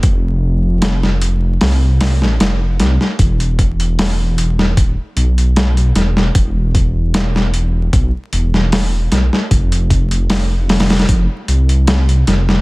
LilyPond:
<<
  \new Staff \with { instrumentName = "Detuned saw bass" } { \clef bass \time 4/4 \key f \lydian \tempo 4 = 76 f,,2 c,8. a,,16 f,,8 c,16 r16 | e,,2 d,,16 r16 b,,4 e,,8 | e,,2 b,,16 r16 e,,4 b,,16 r16 | f,,2 f,,16 r16 c,4 f,,8 | }
  \new DrumStaff \with { instrumentName = "Drums" } \drummode { \time 4/4 <hh bd>4 <hh sn>16 sn16 hh8 <hho sn>8 <hho sn>16 sn16 <hh sn>8 <hh sn>16 sn16 | <hh bd>16 hh16 <hh bd>16 hh16 <hho sn>8 hh16 sn16 <hh bd>8 hh16 hh16 <hh sn>16 hh16 <hh sn>16 sn16 | <hh bd>8 <hh bd>8 <hh sn>16 sn16 hh8 <hh bd>8 hh16 sn16 <hho sn>8 <hh sn>16 sn16 | <hh bd>16 hh16 <hh bd>16 hh16 <hho sn>8 <hho sn>32 <hho sn>32 <hho sn>32 <hho sn>32 <hh bd>8 hh16 hh16 <hh sn>16 hh16 <hh sn>16 sn16 | }
>>